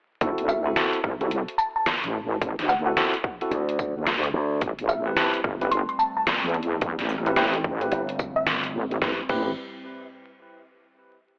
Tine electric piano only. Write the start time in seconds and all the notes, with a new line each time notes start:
0.21 C4 E4 F#4 A4
0.66 C4 E4 F#4 A4
0.76 C4 E4 F#4 A4
1.21 C4 E4 F#4 A4
2.87 C4 E4 F#4 A4
2.97 C4 E4 F#4 A4
3.42 C4 E4 F#4 A4
5.07 C4 E4 G4 B4
5.17 C4 E4 G4 B4
5.61 C4 E4 G4 B4
7.26 C4 E4 G4 B4
7.37 C4 E4 G4 B4
7.81 C4 E4 G4 B4
9.02 C4 E4 G4 B4
9.29 C4 E4 G4 B4